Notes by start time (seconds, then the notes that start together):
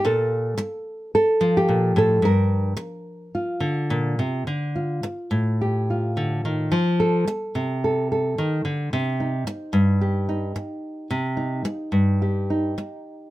0.05 A#2 A4
0.58 muted nylon-string guitar stroke
1.15 A4
1.41 F3
1.57 G4
1.69 A#2
1.96 A2 A4
2.22 G2 A#4
2.77 muted nylon-string guitar stroke
3.35 F4
3.60 D3
3.90 A#2
4.19 C3
4.47 D3
4.76 F4
5.03 muted nylon-string guitar stroke
5.31 A2
5.61 G4
5.90 F4
6.17 D3
6.45 D#3
6.72 F3
7.00 A4
7.27 muted nylon-string guitar stroke
7.55 C3
7.84 A4
8.12 A4
8.38 D#3
8.65 D3
8.93 C3
9.20 D#4
9.47 muted nylon-string guitar stroke
9.73 G2
10.01 G4
10.29 D#4
10.56 muted nylon-string guitar stroke
11.11 C3
11.37 D#4
11.65 muted nylon-string guitar stroke
11.92 G2
12.22 G4
12.50 D#4
12.78 muted nylon-string guitar stroke